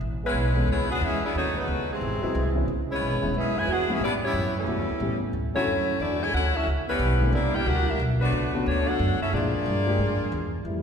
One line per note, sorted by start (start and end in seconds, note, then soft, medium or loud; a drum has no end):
0.01 0.33 A1 medium
0.23 0.65 E3 medium
0.23 0.65 G#3 medium
0.23 0.66 G#3 medium
0.23 0.65 B3 medium
0.23 0.66 C#4 medium
0.23 0.66 E4 medium
0.23 0.66 B4 medium
0.34 0.67 B1 medium
0.55 0.67 E3 medium
0.55 0.67 G#3 medium
0.55 0.67 A3 medium
0.55 0.67 B3 medium
0.55 0.68 C#4 medium
0.68 1.00 C#2 medium
0.68 0.90 E3 medium
0.68 0.89 G#3 medium
0.68 0.91 B3 medium
0.68 0.90 C#4 medium
0.68 0.91 E4 medium
0.68 0.90 G#4 medium
0.68 0.91 C#5 medium
0.89 1.02 D4 medium
0.89 1.00 F#4 medium
0.89 1.02 G#4 medium
0.89 1.02 B4 medium
0.89 1.01 F#5 loud
1.01 1.33 E2 loud
1.01 1.22 G#3 medium
1.01 1.22 C#4 medium
1.01 1.24 C#4 medium
1.01 1.22 E4 medium
1.01 1.24 G#4 medium
1.01 1.24 B4 medium
1.01 1.24 E5 loud
1.23 1.35 B3 medium
1.23 1.34 D4 medium
1.23 1.36 E4 medium
1.23 1.35 G#4 medium
1.23 1.35 D5 medium
1.34 1.67 D#2 medium
1.34 1.54 F#3 medium
1.34 1.54 A3 medium
1.34 1.55 A3 medium
1.34 1.54 C#4 medium
1.34 1.55 D#4 medium
1.34 1.55 F#4 medium
1.34 1.56 C#5 loud
1.55 1.89 C#3 medium
1.55 1.89 F#3 medium
1.55 1.90 A3 medium
1.55 1.89 B3 medium
1.55 1.90 F#4 medium
1.55 1.90 B4 medium
1.59 1.91 D#4 medium
1.68 2.00 C#2 medium
1.88 2.51 C3 medium
1.88 2.51 E3 medium
1.88 2.51 G#3 medium
1.93 2.53 F#3 medium
1.93 2.54 C4 medium
1.93 2.53 E4 medium
1.93 2.53 G#4 medium
2.01 2.21 G#1 medium
2.21 2.53 F#3 medium
2.21 2.53 G#3 medium
2.21 2.54 C4 medium
2.21 2.54 E4 medium
2.21 2.54 B4 medium
2.21 muted upright bass stroke soft
2.35 2.67 C2 medium
2.54 2.66 E3 medium
2.54 2.66 G#3 medium
2.54 2.66 B3 medium
2.54 2.66 C#4 medium
2.54 2.67 E4 medium
2.68 3.00 C#2 medium
2.89 3.31 E3 medium
2.89 3.31 G#3 medium
2.89 3.33 B3 medium
2.89 3.31 C#4 medium
2.89 3.33 E4 medium
2.89 3.33 G#4 medium
2.89 3.33 C#5 medium
3.02 3.12 B1 medium
3.12 3.22 G#1 medium
3.22 3.33 E1 medium
3.22 3.33 E3 medium
3.22 3.33 G#3 soft
3.22 3.33 B3 medium
3.22 3.33 C#4 medium
3.22 3.34 E4 medium
3.34 3.66 F#2 medium
3.34 3.55 G#3 medium
3.34 3.56 B3 medium
3.34 3.57 C#4 medium
3.34 3.56 E4 medium
3.34 3.57 G#4 medium
3.34 3.57 B4 medium
3.34 3.57 E5 loud
3.56 3.68 B2 medium
3.56 3.68 E3 medium
3.56 3.68 G#3 medium
3.56 3.69 E4 medium
3.56 3.69 B4 medium
3.56 3.69 C#5 medium
3.56 3.69 G#5 loud
3.67 3.99 E2 medium
3.67 3.89 F#4 medium
3.67 3.90 B4 medium
3.71 3.90 D4 medium
3.71 3.90 G#4 medium
3.71 3.91 F#5 loud
3.88 3.99 E3 medium
3.88 3.99 G3 medium
3.88 4.01 G#3 medium
3.88 4.00 B3 medium
3.88 4.01 B3 medium
3.88 4.00 C#4 medium
3.88 4.01 E4 medium
3.88 4.00 F#4 medium
3.93 4.03 C#4 medium
3.93 4.03 G#4 medium
3.93 4.03 B4 medium
3.93 4.03 E5 medium
4.00 4.33 A2 medium
4.00 4.13 B3 medium
4.00 4.12 D4 medium
4.00 4.12 E4 medium
4.00 4.13 D5 loud
4.04 4.13 G4 medium
4.24 4.54 E3 medium
4.24 4.54 G3 medium
4.24 4.54 B3 medium
4.24 4.54 C#4 medium
4.24 4.54 E4 medium
4.24 4.54 G4 medium
4.24 4.54 C#5 medium
4.33 4.66 F#2 medium
4.56 5.18 C#3 medium
4.56 5.18 E3 medium
4.56 5.20 G3 medium
4.56 5.18 A3 medium
4.56 5.20 C#4 medium
4.56 5.20 E4 medium
4.60 5.20 A4 medium
4.66 4.78 G2 medium
4.66 4.86 E3 medium
4.66 4.86 G3 soft
4.66 4.87 B3 soft
4.66 4.87 C#4 soft
4.66 4.87 F#4 medium
4.78 4.88 E2 medium
4.89 4.99 C#2 medium
5.00 5.32 A2 medium
5.00 5.19 E3 medium
5.00 5.20 G3 soft
5.00 5.20 B3 soft
5.00 5.20 C#4 medium
5.00 5.20 G4 medium
5.33 5.53 D2 medium
5.54 5.65 D3 medium
5.54 5.65 F#3 medium
5.54 5.97 F#3 medium
5.54 5.97 A3 medium
5.54 5.66 A3 medium
5.54 5.98 A3 medium
5.54 5.96 C#4 medium
5.54 5.66 C#4 medium
5.54 5.66 E4 medium
5.54 5.98 E4 medium
5.54 5.98 F#4 medium
5.54 5.98 C#5 medium
5.54 muted upright bass stroke soft
5.66 5.99 F#2 medium
5.99 6.32 E2 medium
5.99 6.21 F#3 medium
5.99 6.21 A3 medium
5.99 6.22 A3 medium
5.99 6.21 D4 medium
5.99 6.22 E4 medium
5.99 6.22 F#4 medium
5.99 6.22 D5 medium
6.21 6.33 G#3 medium
6.21 6.33 E4 medium
6.21 6.33 A4 medium
6.21 6.33 C#5 medium
6.21 6.35 G#5 loud
6.33 6.66 D2 medium
6.33 6.52 A3 medium
6.33 6.53 C#4 medium
6.33 6.53 E4 medium
6.33 6.53 F#4 medium
6.33 6.54 A4 medium
6.33 6.54 C#5 medium
6.33 6.54 F#5 loud
6.53 6.66 A3 medium
6.53 6.66 C#4 medium
6.53 6.67 C#4 medium
6.53 6.66 E4 medium
6.53 6.67 F#4 medium
6.53 6.67 A4 medium
6.53 6.67 E5 medium
6.66 6.99 C#2 medium
6.87 7.29 E3 medium
6.87 7.29 G3 medium
6.87 7.31 G3 medium
6.87 7.29 B3 medium
6.87 7.31 C#4 medium
6.87 7.31 E4 medium
6.87 7.31 B4 medium
6.99 7.32 B1 loud
7.21 7.32 D3 medium
7.21 7.32 G3 medium
7.21 7.32 A#3 medium
7.21 7.32 C4 medium
7.21 7.32 E4 medium
7.32 7.65 C2 medium
7.32 7.54 G3 medium
7.32 7.52 A#3 medium
7.32 7.55 A#3 medium
7.32 7.54 D4 medium
7.32 7.54 E4 medium
7.32 7.55 G4 medium
7.32 7.55 D5 medium
7.53 7.66 A#3 medium
7.53 7.66 E4 medium
7.53 7.67 E4 medium
7.53 7.66 G4 medium
7.53 7.66 A#4 medium
7.53 7.67 D5 medium
7.53 7.67 G5 medium
7.64 7.98 D2 medium
7.64 7.88 D4 medium
7.64 7.87 F#4 medium
7.64 7.88 G4 medium
7.64 7.88 A#4 medium
7.64 7.88 F#5 loud
7.86 7.99 G3 medium
7.86 7.99 A#3 medium
7.86 7.99 E4 medium
7.86 8.01 A#4 medium
7.86 8.01 E5 medium
7.90 8.01 D4 medium
7.90 8.01 G4 medium
7.99 8.32 B1 medium
8.20 8.62 F#3 medium
8.20 8.63 A3 medium
8.20 8.62 B3 medium
8.20 8.62 D4 medium
8.20 8.63 D4 medium
8.20 8.63 F#4 medium
8.20 8.63 B4 medium
8.32 8.65 C#2 medium
8.54 8.97 D3 medium
8.54 8.97 A3 medium
8.54 8.97 B3 medium
8.54 8.97 C#4 medium
8.54 8.98 F#4 medium
8.65 8.98 D2 medium
8.65 8.87 F#3 medium
8.65 8.86 A3 medium
8.65 8.88 A3 medium
8.65 8.87 C#4 medium
8.65 8.87 D4 medium
8.65 8.88 F#4 medium
8.65 8.87 C#5 medium
8.87 9.21 A3 medium
8.87 9.20 D4 medium
8.87 9.21 D4 medium
8.87 9.20 F#4 medium
8.87 9.21 A4 medium
8.87 9.21 C#5 medium
8.87 9.21 F#5 loud
8.99 9.19 F#2 medium
9.20 9.32 C#4 medium
9.20 9.31 E4 medium
9.20 9.32 F#4 medium
9.20 9.32 A4 medium
9.20 9.33 E5 medium
9.20 muted upright bass stroke soft
9.30 9.65 A#2 medium
9.30 10.49 F3 medium
9.30 9.52 F3 medium
9.30 9.52 G#3 medium
9.30 9.52 A#3 medium
9.30 10.50 A#3 medium
9.30 10.49 D4 medium
9.30 9.52 D4 medium
9.30 10.51 F4 medium
9.30 10.49 G#4 medium
9.30 10.50 G#4 medium
9.30 10.51 D5 loud
9.34 9.53 E4 medium
9.66 9.98 G2 medium
9.86 9.98 F3 medium
9.86 9.98 G#3 medium
9.86 9.98 A#3 medium
9.86 9.98 D4 medium
9.86 9.98 G4 medium
9.98 10.31 G#2 medium
10.32 10.64 E2 medium
10.65 10.82 F2 medium
10.65 10.82 E3 medium
10.65 10.82 G3 medium
10.65 10.82 A3 medium
10.65 10.82 E4 medium